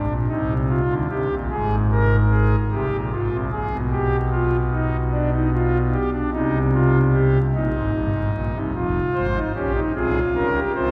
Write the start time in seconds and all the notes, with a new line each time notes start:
Already playing: D4
0.08 A#1 A#2
0.28 C2 C3 D#4
0.69 F4
0.89 D2 D3
1.10 C2 C3 G4
1.30 A#1 A#2
1.50 G#1 G#2 G#4
1.91 A#4
2.31 G#4
2.71 C2 C3 G4
2.92 A#1 A#2
3.12 G#1 G#2 F4
3.32 C2 C3
3.51 A#1 A#2 G#4
3.71 B1 B2
3.91 G4
4.31 F4
4.72 D#4
5.13 D4
5.33 D#4
5.53 F4
5.93 G4
6.13 D4
6.33 C2 C3 D#4
6.74 F4
7.13 G4
7.55 A#1 A#2 D#4
7.74 G#1 G#2
7.93 G1 G2
8.14 G#1 G#2
8.33 A#1 A#2
8.54 C2 C3
8.74 F1 F2 F4
9.14 G#1 G#2 C5
9.35 D#4
9.55 A#1 A#2 C#4 G4
9.75 D#4
9.94 C2 C3 F4 G#4
10.35 C#2 C#3 A#4
10.54 G4
10.75 C2 C3 F4 C5